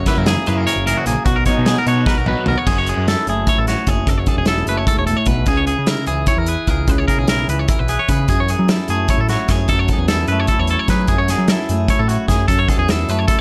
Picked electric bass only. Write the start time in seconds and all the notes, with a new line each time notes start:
0.18 F#2
0.48 F#2
0.76 F#1
1.07 A#1
1.25 B1
1.58 B2
1.86 B2
2.17 B1
2.46 B1
2.66 F#1
2.97 F#2
3.27 F#1
3.58 A1
3.87 F#1
4.07 F#1
4.37 E1
4.66 F#1
4.97 E1
5.27 B1
5.47 C#2
5.78 C#3
6.07 C#2
6.37 E2
6.67 C#2
6.88 C#2
7.18 B1
7.48 C#2
7.80 B1
8.09 C#3
8.28 F#2
8.59 F#3
8.89 F#2
9.18 A2
9.49 F#2
9.69 F#2
9.98 E2
10.28 F#2
10.58 E2
10.89 F#3
11.08 F#2
11.38 F#3
11.69 F#2
11.99 A2
12.28 F#2
12.48 F#2
12.78 E2
13.09 F#2